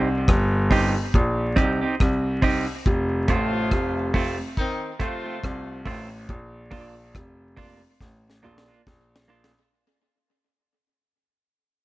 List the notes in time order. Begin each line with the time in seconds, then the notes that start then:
Already playing: C2
0.28 G1, kick, cross-stick
0.71 C4 D#4 G4, kick, open hi-hat
1.14 A#1, kick, hi-hat pedal
1.56 C2 C4 D#4 G4, kick, closed hi-hat
1.81 C4 D#4 G4
2.00 C2, kick, cross-stick
2.42 C4 D#4 G4, kick, open hi-hat
2.67 muted clean electric guitar stroke
2.86 F1, kick, hi-hat pedal
3.28 A1 C3 A3 C4 F4, kick, closed hi-hat
3.71 F1, kick, cross-stick
4.14 A3 C4 F4, kick, open hi-hat
4.57 D#3 C4 D#4, kick, hi-hat pedal
4.99 C3 A3 C4 F4, kick, closed hi-hat
5.24 A3 C4 F4
5.44 C2, kick, cross-stick
5.85 A1 A3 C4 F4, kick, open hi-hat
6.10 muted clean electric guitar stroke
6.29 A#1, kick, hi-hat pedal
6.71 A#1 A#3 D4 F4, kick, open hi-hat
7.15 F1, kick, cross-stick, hi-hat pedal
7.57 A#3 D4 F4, kick, open hi-hat
8.01 A1, kick, snare
8.30 snare
8.43 A#1 A#3 D4 F4
8.58 snare
8.68 A#3 D4 F4
8.87 A#1, kick, snare
9.16 snare
9.28 A#3 D4 F4
9.44 snare